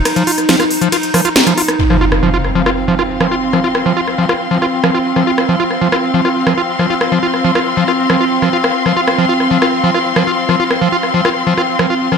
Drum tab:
RD |x---x---x---x---|----------------|----------------|----------------|
HH |xxoxxxoxxxoxxxox|----------------|----------------|----------------|
SD |r--ror--r-r-or-r|-r-r--r-r--r-r--|r-r--r-r--r-r--r|-r--r-r--r-r--r-|

RD |----------------|----------------|----------------|
HH |----------------|----------------|----------------|
SD |r--r-r--r-r--r-r|-r-r--r-r--r-r--|r-r--r-r--r-r--r|